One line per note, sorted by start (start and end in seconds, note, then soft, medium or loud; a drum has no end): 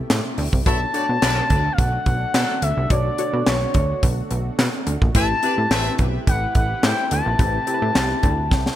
0.00 5.11 B2 medium
0.00 0.62 C3 medium
0.00 8.76 A3 medium
0.00 0.62 E4 medium
0.00 0.62 G4 loud
0.10 0.20 A2 loud
0.10 snare loud
0.10 clap medium
0.10 closed hi-hat loud
0.38 0.48 D2 loud
0.38 open hi-hat medium
0.53 0.62 C2 medium
0.53 kick loud
0.66 0.86 B1 loud
0.66 5.11 D3 medium
0.66 5.11 D4 medium
0.66 0.84 D4 medium
0.66 0.78 E4 loud
0.66 5.11 F#4 medium
0.66 0.85 F#4 medium
0.66 0.85 A4 medium
0.66 0.78 C#5 loud
0.66 0.85 C#5 medium
0.66 0.78 E5 loud
0.66 1.74 A5 loud
0.66 kick loud
0.66 closed hi-hat loud
0.94 1.06 A3 medium
0.94 1.66 D4 medium
0.94 1.66 F#4 medium
0.94 1.06 F#4 loud
0.94 1.66 A4 medium
0.94 1.66 C#5 medium
0.94 1.06 D5 loud
0.94 closed hi-hat medium
1.09 1.18 B2 medium
1.22 1.42 B1 loud
1.22 1.45 F#3 loud
1.22 1.45 D4 loud
1.22 1.45 B4 loud
1.22 snare loud
1.22 clap loud
1.22 closed hi-hat medium
1.50 1.70 D2 loud
1.50 kick medium
1.50 closed hi-hat medium
1.73 1.80 F5 medium
1.78 1.98 B1 loud
1.78 2.64 F#5 loud
1.78 kick loud
1.78 closed hi-hat medium
2.06 2.26 B1 loud
2.06 kick medium
2.06 closed hi-hat medium
2.34 2.45 B2 loud
2.34 2.57 F#3 medium
2.34 2.57 D4 medium
2.34 2.57 A4 loud
2.34 snare loud
2.34 clap medium
2.34 closed hi-hat loud
2.62 2.73 D2 medium
2.62 2.92 E5 loud
2.62 closed hi-hat medium
2.77 2.86 C2 medium
2.90 3.10 B1 loud
2.90 3.09 D4 medium
2.90 3.09 F#4 medium
2.90 3.09 A4 medium
2.90 3.09 C#5 medium
2.90 3.49 D5 loud
2.90 kick loud
2.90 closed hi-hat loud
3.18 3.90 D4 medium
3.18 3.90 F#4 medium
3.18 3.91 A4 medium
3.18 3.91 C#5 medium
3.18 closed hi-hat medium
3.33 3.42 B2 medium
3.46 3.66 B1 loud
3.46 4.03 C#5 medium
3.46 snare loud
3.46 clap loud
3.46 closed hi-hat medium
3.74 3.94 D2 loud
3.74 kick loud
3.74 closed hi-hat medium
4.03 4.22 B1 loud
4.03 kick loud
4.03 closed hi-hat loud
4.31 4.50 B1 medium
4.31 closed hi-hat medium
4.59 4.69 B2 loud
4.59 snare loud
4.59 clap medium
4.59 closed hi-hat loud
4.87 4.97 D2 medium
4.87 closed hi-hat medium
5.02 5.11 A#1 medium
5.02 kick loud
5.15 5.34 A1 loud
5.15 8.76 C3 medium
5.15 5.33 C4 medium
5.15 5.27 C4 loud
5.15 8.76 E4 medium
5.15 5.33 E4 medium
5.15 8.76 G4 medium
5.15 5.33 G4 medium
5.15 8.76 B4 medium
5.15 5.27 B4 loud
5.15 5.34 B4 medium
5.15 5.27 E5 loud
5.15 5.95 A5 loud
5.15 kick loud
5.15 closed hi-hat loud
5.43 6.15 C4 medium
5.43 5.55 D4 medium
5.43 6.15 E4 medium
5.43 6.15 G4 medium
5.43 5.55 B4 medium
5.43 6.15 B4 medium
5.43 5.55 D5 loud
5.43 closed hi-hat medium
5.58 5.67 A2 medium
5.71 5.90 A1 loud
5.71 5.93 C4 loud
5.71 5.93 B4 loud
5.71 5.93 E5 loud
5.71 snare loud
5.71 clap medium
5.71 closed hi-hat medium
5.99 6.18 B1 medium
5.99 kick medium
5.99 closed hi-hat medium
6.27 6.47 A1 loud
6.27 6.54 F#5 loud
6.27 kick loud
6.27 closed hi-hat loud
6.55 6.74 A1 medium
6.55 6.86 F#5 loud
6.55 kick loud
6.55 closed hi-hat medium
6.83 6.94 A2 loud
6.83 7.06 G3 medium
6.83 7.06 E4 medium
6.83 7.06 C5 medium
6.83 7.12 G5 loud
6.83 snare loud
6.83 clap medium
6.83 closed hi-hat medium
7.11 7.22 D2 medium
7.11 8.76 A5 loud
7.11 closed hi-hat medium
7.26 7.35 A#1 medium
7.39 7.59 A1 loud
7.39 7.57 C4 medium
7.39 7.58 E4 medium
7.39 7.58 G4 medium
7.39 7.58 B4 medium
7.39 kick loud
7.39 closed hi-hat loud
7.67 8.39 C4 medium
7.67 8.39 E4 medium
7.67 8.39 G4 medium
7.67 7.74 A#4 medium
7.67 closed hi-hat medium
7.74 8.43 B4 medium
7.82 7.91 A2 loud
7.95 8.14 C2 loud
7.95 snare loud
7.95 clap loud
7.95 closed hi-hat medium
8.23 8.53 D2 loud
8.23 kick medium
8.23 closed hi-hat medium
8.51 8.71 C2 loud
8.51 kick loud
8.51 snare medium
8.66 snare medium